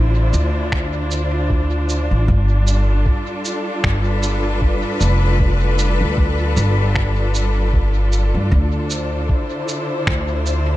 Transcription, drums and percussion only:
0.33 cabasa soft
0.72 finger snap medium
0.72 kick loud
1.11 cabasa soft
1.50 kick loud
1.89 cabasa soft
2.28 kick loud
2.67 cabasa soft
3.06 kick loud
3.45 cabasa soft
3.84 finger snap medium
3.84 kick loud
4.23 cabasa soft
4.62 kick loud
5.01 cabasa soft
5.40 kick medium
5.79 cabasa soft
6.18 kick loud
6.57 cabasa soft
6.96 finger snap medium
6.96 kick medium
7.35 cabasa soft
7.74 kick loud
8.12 cabasa soft
8.51 kick medium
8.90 cabasa soft
9.29 kick medium
9.68 cabasa soft
10.07 finger snap medium
10.07 kick medium
10.46 cabasa soft

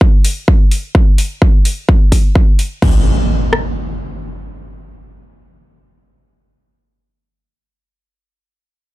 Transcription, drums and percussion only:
0.01 kick loud
0.25 open hi-hat loud
0.48 kick loud
0.71 open hi-hat medium
0.95 kick loud
1.18 open hi-hat loud
1.42 kick loud
1.65 open hi-hat medium
1.89 kick loud
2.12 kick medium
2.12 open hi-hat medium
2.35 kick loud
2.59 open hi-hat medium
2.82 kick loud
2.82 crash medium
3.53 cross-stick medium

